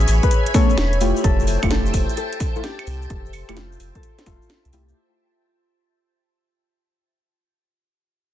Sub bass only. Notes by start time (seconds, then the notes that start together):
0.08 A1
0.78 E1
1.01 F1
1.24 F1
1.63 F1
1.94 F1
2.87 C2
3.10 F1
3.49 F1
3.80 F1
4.27 F1
4.65 C2
4.73 C2